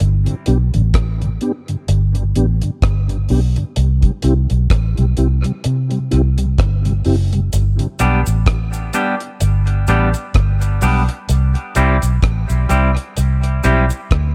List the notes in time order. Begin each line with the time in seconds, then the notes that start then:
0.00 G1, closed hi-hat
0.26 G2 D3, closed hi-hat
0.46 B1 B3 D4 G4, closed hi-hat
0.74 A1 G2 D3, closed hi-hat
0.94 kick, cross-stick, closed hi-hat
1.21 G2 D3, closed hi-hat
1.41 B3 D4 G4, closed hi-hat
1.68 G2 D3, closed hi-hat
1.88 G1, closed hi-hat
2.15 G2 D3, closed hi-hat
2.36 A1 B3 D4 G4, closed hi-hat
2.62 G2 D3, closed hi-hat
2.82 G1, kick, cross-stick, closed hi-hat
3.09 G2 D3, closed hi-hat
3.29 B1 B3 D4 G4, open hi-hat
3.56 G2 D3, closed hi-hat
3.76 C2, closed hi-hat
4.02 C3 G3, kick, closed hi-hat
4.22 C2 C4 E4 G4, closed hi-hat
4.50 B1, closed hi-hat
4.70 A1, kick, cross-stick, closed hi-hat
4.97 B1 C3 G3, closed hi-hat
5.17 C2 C4 E4 G4, closed hi-hat
5.44 C3 G3, closed hi-hat
5.64 C3, closed hi-hat
5.91 C3 G3, closed hi-hat
6.11 C2 C4 E4 G4, closed hi-hat
6.38 C3 G3, closed hi-hat
6.58 G1, kick, cross-stick, closed hi-hat
6.85 C3 G3, closed hi-hat
7.05 F#1 C4 E4 G4, open hi-hat
7.33 C3 G3, closed hi-hat
7.53 G1, closed hi-hat, cabasa
7.79 G2 D3, closed hi-hat
7.99 B1 G3 B3 D4 G4, closed hi-hat, cabasa
8.26 A1, closed hi-hat, cabasa
8.46 kick, cross-stick, closed hi-hat
8.73 closed hi-hat, cabasa
8.93 G3 B3 D4 G4, closed hi-hat, cabasa
9.20 closed hi-hat
9.40 G1, closed hi-hat, cabasa
9.67 closed hi-hat
9.87 A1 G3 B3 D4 G4, closed hi-hat, cabasa
10.14 closed hi-hat, cabasa
10.34 G1, kick, cross-stick, closed hi-hat
10.61 closed hi-hat, cabasa
10.81 B1 G3 B3 D4 G4, open hi-hat, cabasa
11.09 muted clean electric guitar stroke, closed hi-hat
11.29 C2, closed hi-hat, cabasa
11.55 closed hi-hat
11.75 C2 G3 C4 E4 G4, closed hi-hat, cabasa
12.02 B1, closed hi-hat, cabasa
12.22 A1, kick, cross-stick, closed hi-hat
12.50 B1, closed hi-hat, cabasa
12.69 C2 G3 C4 E4 G4, closed hi-hat, cabasa
12.97 closed hi-hat
13.17 C2, closed hi-hat, cabasa
13.43 closed hi-hat
13.63 B1 G3 C4 E4 G4, closed hi-hat, cabasa
13.90 closed hi-hat, cabasa
14.11 D2, kick, cross-stick, closed hi-hat